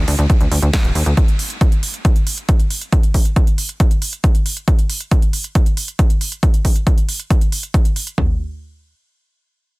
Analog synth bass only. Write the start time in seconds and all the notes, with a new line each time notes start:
0.08 D2
0.19 D2
0.41 D2
0.52 D2
0.62 D2
0.84 D1
0.95 D#2
1.06 D2